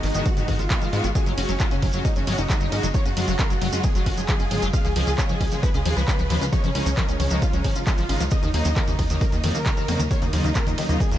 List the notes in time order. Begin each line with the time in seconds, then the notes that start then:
0.03 G#1 D#3 D#4, open hi-hat
0.14 G#1 D#3 G#3 B3 D#4 F#4, closed hi-hat, maracas
0.26 G#3 F#4, kick, closed hi-hat, maracas
0.37 G#1 D#3 G#3 B3 D#4 F#4, closed hi-hat, maracas
0.48 G#2 D#3 G#3 B3 D#4 F#4, kick, open hi-hat
0.59 G#1 G#3 F4, closed hi-hat, maracas
0.70 D#3 G#3 B3 F#4, kick, clap, closed hi-hat, maracas
0.82 G#2 D#3, closed hi-hat, maracas
0.93 G#2 D#3 G#3 B3 F#4, open hi-hat
1.04 G#1 D#3, closed hi-hat, maracas
1.15 C#3 F#3 G#3 F#4 G#4, kick, closed hi-hat, maracas
1.26 F#1 F#3 C#4, closed hi-hat, maracas
1.38 F#1 C#3 F#3 G#3 C#4 F#4, open hi-hat, ride
1.49 F#1 F#3 C#4, closed hi-hat, maracas
1.60 C#3 F#3 G#3 F4 F#4, kick, clap, closed hi-hat, maracas
1.71 F#1 C#4, closed hi-hat, maracas
1.82 F#1 F#3 C#4, kick, open hi-hat, ride
1.93 F#1 C#3 F#3 G#3 C#4 F#4, closed hi-hat, maracas
2.05 C#4 D#4, kick, closed hi-hat, maracas
2.16 F#1 C#3 F#3 G#3 C#4 F#4, closed hi-hat, maracas
2.27 G#1 C#3 F#3 G#3 C#4 F#4, open hi-hat, ride
2.38 F#1 C#4 D#4, closed hi-hat, maracas
2.50 C#3 F#3 G#3 F#4, kick, clap, closed hi-hat, maracas
2.60 F#1 F#3, closed hi-hat, maracas
2.72 G#1 C#3 F#3 G#3 C#4 F#4, open hi-hat, ride
2.83 F#1 F#3, closed hi-hat, maracas
2.94 C#3 F#3 G#3 F4 C#5, kick, closed hi-hat, maracas
3.05 F#1 C#4 F#4, closed hi-hat, maracas
3.17 F#1 C#3 F#3 G#3 F4 F#4, open hi-hat, ride
3.28 F#1 F#3 F#4, closed hi-hat, maracas
3.39 C#3 F#3 G#3 C#4 F4 A#4, kick, clap, closed hi-hat, maracas
3.50 F#1 F#3 F#4, closed hi-hat, maracas
3.62 F#1 F#3 F#4, open hi-hat, ride
3.73 F#1 C#3 F#3 G#3 C#4 F4 F#4, closed hi-hat, maracas
3.83 F#3 G#4, kick, closed hi-hat, maracas
3.95 F#1 C#3 F#3 G#3 F4 F#4, closed hi-hat, maracas
4.06 G#1 C#3 F#3 G#3 C#4 F4 F#4, kick, open hi-hat, ride
4.17 F#1 F#3 G#4, closed hi-hat, maracas
4.28 C#3 F#3 G#3 F4, kick, clap, closed hi-hat, maracas
4.39 F#1 C#4, closed hi-hat, maracas
4.51 G#1 C#3 F#3 G#3 F4, open hi-hat, ride
4.62 F#1 F#3, closed hi-hat, maracas
4.73 C#3 F3 G#3 C#4 F4 F5, kick, closed hi-hat, maracas
4.85 C#2 F3 G#4, closed hi-hat, maracas
4.96 C#2 C#3 F3 G#3 F4 G#4, open hi-hat, ride
5.07 C#2 C#4 G#4, closed hi-hat, maracas
5.18 C#3 F3 G#3 F4 C#5, kick, clap, closed hi-hat, maracas
5.29 C#2 F3 G#4, closed hi-hat, maracas
5.41 C#2 C#4 G#4, kick, open hi-hat, ride
5.51 C#2 C#3 F3 G#3 F4 G#4, closed hi-hat, maracas
5.63 F3 B4, kick, closed hi-hat, maracas
5.74 C#2 C#3 F3 G#3 C#4 F4 G#4, closed hi-hat, maracas
5.85 D#2 C#3 F3 G#3 F4 G#4, open hi-hat, ride
5.97 C#2 F3 B4, closed hi-hat, maracas
6.08 C#3 F3 G#3 C#4 F4, kick, clap, closed hi-hat, maracas
6.19 C#2 F3, closed hi-hat, maracas
6.30 D#2 C#3 F3 G#3 F4, open hi-hat, ride
6.41 C#2 C#4, closed hi-hat, maracas
6.53 C#3 F3 G#3 D#4 C#5, kick, closed hi-hat, maracas
6.64 C#2 F3 C#4, closed hi-hat, maracas
6.75 C#2 C#3 F3 G#3 C#4 D#4, open hi-hat, ride
6.86 C#2 F3 C#4, closed hi-hat, maracas
6.97 C#3 F3 G#3 D#4 A#4, kick, clap, closed hi-hat, maracas
7.08 C#2 C#4, closed hi-hat, maracas
7.20 C#2 F3 C#4, open hi-hat, ride
7.30 C#2 C#3 F3 G#3 C#4 D#4, closed hi-hat, maracas
7.42 C#4 F4, kick, closed hi-hat, maracas
7.53 C#2 C#3 F3 G#3 C#4 D#4, closed hi-hat, maracas
7.64 G#1 C#3 F3 G#3 C#4 D#4, kick, open hi-hat, ride
7.75 C#2 C#4 F4, closed hi-hat, maracas
7.87 C#3 F3 G#3 D#4, kick, clap, closed hi-hat, maracas
7.98 G#1 F3, closed hi-hat, maracas
8.09 G#1 C#3 F3 G#3 C#4 D#4, open hi-hat, ride
8.20 C#2 F3, closed hi-hat, maracas
8.31 C#3 D#3 F#3 A#3 D#4 D#5, kick, closed hi-hat, maracas
8.43 D#2 D#3 D#4, closed hi-hat, maracas
8.54 D#2 C#3 F#3 A#3 D#4, open hi-hat, ride
8.65 D#2 D#3 D#4, closed hi-hat, maracas
8.76 C#3 D#3 F#3 A#3 D#4 A#4, kick, clap, closed hi-hat, maracas
8.87 D#2 A#3 D#4, closed hi-hat, maracas
8.99 D#2 D#3 D#4, kick, open hi-hat, ride
9.10 D#2 C#3 D#3 F#3 A#3 D#4, closed hi-hat, maracas
9.21 A#3 A#4, kick, closed hi-hat, maracas
9.32 D#2 C#3 D#3 F#3 A#3 D#4, closed hi-hat, maracas
9.43 F2 C#3 D#3 F#3 A#3 D#4, open hi-hat, ride
9.55 D#2 A#3 A#4, maracas
9.66 C#3 D#3 F#3 A#3 D#4, kick, clap, closed hi-hat, maracas
9.77 D#2 D#3, closed hi-hat, maracas
9.88 F2 C#3 F#3 A#3 D#4, open hi-hat, ride
9.99 D#2 D#3, closed hi-hat, maracas
10.11 C#3 D#3 F#3 A#3 F4 C#5, kick, closed hi-hat, maracas
10.22 D#2 A#3 D#4, closed hi-hat, maracas
10.33 D#2 C#3 D#3 F#3 A#3 D#4 F4, open hi-hat, ride
10.44 D#2 D#3 D#4, closed hi-hat, maracas
10.55 C#3 F#3 A#3 F4 A#4, kick, clap, closed hi-hat, maracas
10.67 D#2 D#3 D#4, closed hi-hat, maracas
10.78 D#2 D#3 D#4, open hi-hat, ride
10.89 D#2 C#3 F#3 A#3 D#4 F4, closed hi-hat, maracas
11.00 D#3 G#4, kick, closed hi-hat, maracas
11.11 D#2 C#3 D#3 F#3 A#3 D#4 F4, closed hi-hat, maracas